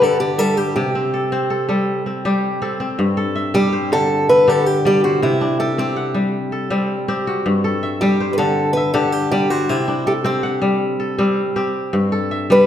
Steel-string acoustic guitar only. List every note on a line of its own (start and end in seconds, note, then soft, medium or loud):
0.03 0.20 A4 medium
0.20 0.39 G4 medium
0.39 0.57 A4 medium
0.57 0.74 G4 medium
0.76 2.58 G4 medium
3.55 3.92 G4 loud
3.93 4.27 A4 loud
4.29 4.49 B4 medium
4.49 4.66 A4 medium
4.66 4.85 G4 medium
4.87 5.04 G4 medium
5.04 5.23 F#4 medium
5.23 5.59 E4 medium
5.60 5.78 G4 medium
5.79 6.30 G4 medium
8.01 8.29 G4 medium
8.33 8.37 B4 medium
8.38 8.73 A4 loud
8.73 8.92 B4 loud
8.94 9.12 A4 loud
9.12 9.30 G4 medium
9.31 9.50 G4 loud
9.50 9.69 F#4 medium
9.69 10.07 E4 medium
10.07 10.12 G4 medium
10.26 10.77 G4 medium
12.52 12.67 B4 loud